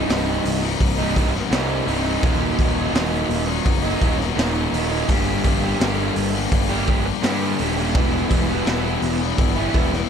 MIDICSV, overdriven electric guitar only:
0, 0, Header, 1, 3, 480
1, 0, Start_track
1, 0, Key_signature, -3, "minor"
1, 0, Tempo, 715990
1, 1495, Time_signature, 4, 2, 24, 8
1, 6767, End_track
2, 0, Start_track
2, 0, Title_t, "Overdriven electric guitar"
2, 0, Program_c, 0, 29
2, 0, Note_on_c, 0, 63, 85
2, 52, Note_on_c, 0, 36, 87
2, 58, Note_on_c, 0, 43, 96
2, 65, Note_on_c, 0, 48, 94
2, 67, Note_on_c, 0, 55, 99
2, 68, Note_off_c, 0, 63, 0
2, 71, Note_on_c, 0, 63, 104
2, 408, Note_off_c, 0, 63, 0
2, 410, Note_off_c, 0, 55, 0
2, 411, Note_off_c, 0, 48, 0
2, 413, Note_off_c, 0, 43, 0
2, 654, Note_off_c, 0, 36, 0
2, 654, Note_on_c, 0, 63, 86
2, 664, Note_on_c, 0, 55, 70
2, 672, Note_on_c, 0, 48, 59
2, 771, Note_off_c, 0, 48, 0
2, 771, Note_on_c, 0, 43, 62
2, 777, Note_off_c, 0, 55, 0
2, 779, Note_on_c, 0, 48, 82
2, 784, Note_off_c, 0, 63, 0
2, 785, Note_on_c, 0, 55, 84
2, 792, Note_on_c, 0, 63, 89
2, 887, Note_off_c, 0, 63, 0
2, 891, Note_off_c, 0, 48, 0
2, 891, Note_off_c, 0, 55, 0
2, 894, Note_off_c, 0, 43, 0
2, 1005, Note_on_c, 0, 36, 103
2, 1010, Note_on_c, 0, 43, 91
2, 1015, Note_on_c, 0, 48, 100
2, 1020, Note_on_c, 0, 55, 97
2, 1027, Note_on_c, 0, 63, 89
2, 1243, Note_off_c, 0, 43, 0
2, 1247, Note_off_c, 0, 48, 0
2, 1251, Note_on_c, 0, 43, 82
2, 1255, Note_on_c, 0, 48, 85
2, 1256, Note_off_c, 0, 55, 0
2, 1258, Note_off_c, 0, 63, 0
2, 1264, Note_on_c, 0, 55, 76
2, 1266, Note_on_c, 0, 63, 82
2, 1360, Note_off_c, 0, 63, 0
2, 1368, Note_on_c, 0, 63, 82
2, 1370, Note_off_c, 0, 55, 0
2, 1379, Note_on_c, 0, 55, 88
2, 1380, Note_off_c, 0, 48, 0
2, 1388, Note_on_c, 0, 48, 69
2, 1475, Note_off_c, 0, 36, 0
2, 1477, Note_off_c, 0, 63, 0
2, 1478, Note_off_c, 0, 43, 0
2, 1482, Note_off_c, 0, 55, 0
2, 1487, Note_off_c, 0, 48, 0
2, 1489, Note_on_c, 0, 39, 106
2, 1495, Note_on_c, 0, 46, 104
2, 1497, Note_on_c, 0, 51, 100
2, 1501, Note_on_c, 0, 54, 101
2, 1504, Note_on_c, 0, 58, 97
2, 1508, Note_on_c, 0, 63, 116
2, 1842, Note_off_c, 0, 63, 0
2, 1850, Note_on_c, 0, 63, 65
2, 1852, Note_off_c, 0, 58, 0
2, 1855, Note_off_c, 0, 54, 0
2, 1855, Note_on_c, 0, 58, 69
2, 1861, Note_off_c, 0, 51, 0
2, 1863, Note_on_c, 0, 54, 73
2, 1869, Note_on_c, 0, 51, 68
2, 1952, Note_off_c, 0, 39, 0
2, 1958, Note_off_c, 0, 46, 0
2, 1960, Note_on_c, 0, 39, 96
2, 1961, Note_off_c, 0, 51, 0
2, 1965, Note_off_c, 0, 54, 0
2, 1966, Note_on_c, 0, 46, 95
2, 1969, Note_on_c, 0, 51, 102
2, 1971, Note_off_c, 0, 58, 0
2, 1971, Note_off_c, 0, 63, 0
2, 1973, Note_on_c, 0, 54, 92
2, 1973, Note_on_c, 0, 58, 107
2, 1979, Note_on_c, 0, 63, 102
2, 2319, Note_off_c, 0, 63, 0
2, 2322, Note_off_c, 0, 58, 0
2, 2324, Note_off_c, 0, 54, 0
2, 2325, Note_off_c, 0, 51, 0
2, 2565, Note_on_c, 0, 63, 79
2, 2566, Note_off_c, 0, 39, 0
2, 2569, Note_off_c, 0, 46, 0
2, 2572, Note_on_c, 0, 58, 77
2, 2575, Note_on_c, 0, 54, 64
2, 2582, Note_on_c, 0, 51, 64
2, 2675, Note_off_c, 0, 51, 0
2, 2683, Note_off_c, 0, 54, 0
2, 2683, Note_on_c, 0, 51, 73
2, 2690, Note_off_c, 0, 58, 0
2, 2691, Note_on_c, 0, 54, 86
2, 2693, Note_off_c, 0, 63, 0
2, 2698, Note_on_c, 0, 58, 85
2, 2701, Note_on_c, 0, 63, 89
2, 2801, Note_off_c, 0, 63, 0
2, 2802, Note_off_c, 0, 58, 0
2, 2803, Note_off_c, 0, 54, 0
2, 2805, Note_off_c, 0, 51, 0
2, 2914, Note_on_c, 0, 39, 96
2, 2920, Note_on_c, 0, 46, 99
2, 2924, Note_on_c, 0, 51, 101
2, 2929, Note_on_c, 0, 54, 110
2, 2931, Note_on_c, 0, 58, 99
2, 2934, Note_on_c, 0, 63, 102
2, 3150, Note_off_c, 0, 51, 0
2, 3157, Note_off_c, 0, 54, 0
2, 3158, Note_on_c, 0, 51, 65
2, 3165, Note_off_c, 0, 58, 0
2, 3165, Note_on_c, 0, 54, 73
2, 3170, Note_off_c, 0, 63, 0
2, 3173, Note_on_c, 0, 58, 92
2, 3178, Note_on_c, 0, 63, 84
2, 3276, Note_off_c, 0, 63, 0
2, 3283, Note_off_c, 0, 58, 0
2, 3284, Note_on_c, 0, 63, 80
2, 3288, Note_off_c, 0, 54, 0
2, 3291, Note_on_c, 0, 58, 76
2, 3295, Note_off_c, 0, 51, 0
2, 3296, Note_on_c, 0, 54, 68
2, 3303, Note_on_c, 0, 51, 72
2, 3389, Note_off_c, 0, 39, 0
2, 3392, Note_off_c, 0, 46, 0
2, 3394, Note_off_c, 0, 63, 0
2, 3397, Note_off_c, 0, 58, 0
2, 3400, Note_off_c, 0, 54, 0
2, 3402, Note_on_c, 0, 43, 107
2, 3404, Note_off_c, 0, 51, 0
2, 3407, Note_on_c, 0, 50, 99
2, 3410, Note_on_c, 0, 55, 106
2, 3415, Note_on_c, 0, 58, 106
2, 3418, Note_on_c, 0, 62, 105
2, 3419, Note_on_c, 0, 67, 109
2, 3763, Note_off_c, 0, 62, 0
2, 3763, Note_off_c, 0, 67, 0
2, 3766, Note_on_c, 0, 67, 80
2, 3768, Note_off_c, 0, 58, 0
2, 3771, Note_on_c, 0, 62, 79
2, 3776, Note_on_c, 0, 58, 70
2, 3780, Note_off_c, 0, 55, 0
2, 3783, Note_on_c, 0, 55, 60
2, 3878, Note_off_c, 0, 43, 0
2, 3884, Note_off_c, 0, 50, 0
2, 3886, Note_on_c, 0, 43, 101
2, 3891, Note_off_c, 0, 58, 0
2, 3892, Note_on_c, 0, 50, 91
2, 3893, Note_off_c, 0, 55, 0
2, 3894, Note_off_c, 0, 62, 0
2, 3895, Note_on_c, 0, 55, 103
2, 3899, Note_on_c, 0, 58, 106
2, 3902, Note_on_c, 0, 62, 100
2, 3904, Note_off_c, 0, 67, 0
2, 3907, Note_on_c, 0, 67, 95
2, 4243, Note_off_c, 0, 62, 0
2, 4245, Note_off_c, 0, 58, 0
2, 4246, Note_off_c, 0, 67, 0
2, 4251, Note_off_c, 0, 55, 0
2, 4485, Note_on_c, 0, 67, 88
2, 4489, Note_off_c, 0, 43, 0
2, 4490, Note_on_c, 0, 62, 70
2, 4492, Note_off_c, 0, 50, 0
2, 4497, Note_on_c, 0, 58, 69
2, 4500, Note_on_c, 0, 55, 65
2, 4600, Note_off_c, 0, 55, 0
2, 4603, Note_on_c, 0, 55, 77
2, 4605, Note_off_c, 0, 58, 0
2, 4612, Note_off_c, 0, 62, 0
2, 4613, Note_on_c, 0, 58, 88
2, 4619, Note_off_c, 0, 67, 0
2, 4620, Note_on_c, 0, 62, 77
2, 4621, Note_on_c, 0, 67, 83
2, 4724, Note_off_c, 0, 62, 0
2, 4727, Note_off_c, 0, 58, 0
2, 4727, Note_off_c, 0, 67, 0
2, 4731, Note_off_c, 0, 55, 0
2, 4840, Note_on_c, 0, 43, 88
2, 4846, Note_on_c, 0, 50, 98
2, 4850, Note_on_c, 0, 55, 95
2, 4853, Note_on_c, 0, 58, 101
2, 4856, Note_on_c, 0, 62, 114
2, 4861, Note_on_c, 0, 67, 104
2, 5084, Note_off_c, 0, 55, 0
2, 5085, Note_off_c, 0, 58, 0
2, 5087, Note_on_c, 0, 55, 80
2, 5091, Note_off_c, 0, 62, 0
2, 5093, Note_on_c, 0, 58, 89
2, 5099, Note_on_c, 0, 62, 87
2, 5103, Note_off_c, 0, 67, 0
2, 5106, Note_on_c, 0, 67, 88
2, 5205, Note_off_c, 0, 67, 0
2, 5207, Note_off_c, 0, 62, 0
2, 5207, Note_on_c, 0, 67, 73
2, 5211, Note_off_c, 0, 58, 0
2, 5215, Note_on_c, 0, 62, 81
2, 5219, Note_on_c, 0, 58, 71
2, 5220, Note_off_c, 0, 55, 0
2, 5223, Note_on_c, 0, 55, 66
2, 5313, Note_off_c, 0, 43, 0
2, 5315, Note_off_c, 0, 50, 0
2, 5320, Note_off_c, 0, 62, 0
2, 5322, Note_off_c, 0, 58, 0
2, 5326, Note_on_c, 0, 40, 99
2, 5333, Note_on_c, 0, 47, 102
2, 5335, Note_off_c, 0, 55, 0
2, 5338, Note_on_c, 0, 52, 109
2, 5339, Note_on_c, 0, 55, 117
2, 5342, Note_on_c, 0, 59, 124
2, 5343, Note_off_c, 0, 67, 0
2, 5346, Note_on_c, 0, 64, 102
2, 5677, Note_off_c, 0, 64, 0
2, 5683, Note_off_c, 0, 59, 0
2, 5685, Note_on_c, 0, 64, 76
2, 5691, Note_on_c, 0, 59, 74
2, 5694, Note_off_c, 0, 52, 0
2, 5694, Note_off_c, 0, 55, 0
2, 5696, Note_on_c, 0, 55, 67
2, 5702, Note_on_c, 0, 52, 59
2, 5796, Note_off_c, 0, 40, 0
2, 5803, Note_off_c, 0, 47, 0
2, 5804, Note_off_c, 0, 52, 0
2, 5805, Note_on_c, 0, 40, 100
2, 5811, Note_on_c, 0, 47, 86
2, 5812, Note_on_c, 0, 52, 92
2, 5813, Note_off_c, 0, 55, 0
2, 5815, Note_off_c, 0, 59, 0
2, 5816, Note_on_c, 0, 55, 84
2, 5818, Note_off_c, 0, 64, 0
2, 5823, Note_on_c, 0, 59, 87
2, 5826, Note_on_c, 0, 64, 105
2, 6163, Note_off_c, 0, 64, 0
2, 6164, Note_off_c, 0, 55, 0
2, 6165, Note_off_c, 0, 59, 0
2, 6166, Note_off_c, 0, 52, 0
2, 6406, Note_on_c, 0, 64, 81
2, 6410, Note_off_c, 0, 40, 0
2, 6412, Note_on_c, 0, 59, 73
2, 6413, Note_off_c, 0, 47, 0
2, 6417, Note_on_c, 0, 55, 66
2, 6423, Note_on_c, 0, 52, 59
2, 6517, Note_off_c, 0, 52, 0
2, 6522, Note_off_c, 0, 55, 0
2, 6525, Note_on_c, 0, 52, 74
2, 6530, Note_on_c, 0, 55, 76
2, 6531, Note_off_c, 0, 59, 0
2, 6534, Note_off_c, 0, 64, 0
2, 6539, Note_on_c, 0, 59, 83
2, 6542, Note_on_c, 0, 64, 77
2, 6647, Note_off_c, 0, 64, 0
2, 6649, Note_off_c, 0, 55, 0
2, 6649, Note_off_c, 0, 59, 0
2, 6652, Note_off_c, 0, 52, 0
2, 6767, End_track
3, 0, Start_track
3, 0, Title_t, "Muted overdriven electric guitar strokes"
3, 416, Note_on_c, 9, 29, 55
3, 483, Note_off_c, 9, 29, 0
3, 895, Note_on_c, 9, 29, 45
3, 962, Note_off_c, 9, 29, 0
3, 2327, Note_on_c, 9, 29, 56
3, 2394, Note_off_c, 9, 29, 0
3, 2809, Note_on_c, 9, 29, 48
3, 2876, Note_off_c, 9, 29, 0
3, 4248, Note_on_c, 9, 29, 56
3, 4315, Note_off_c, 9, 29, 0
3, 4730, Note_on_c, 9, 29, 43
3, 4797, Note_off_c, 9, 29, 0
3, 6171, Note_on_c, 9, 29, 57
3, 6238, Note_off_c, 9, 29, 0
3, 6655, Note_on_c, 9, 29, 48
3, 6722, Note_off_c, 9, 29, 0
3, 6767, End_track
0, 0, End_of_file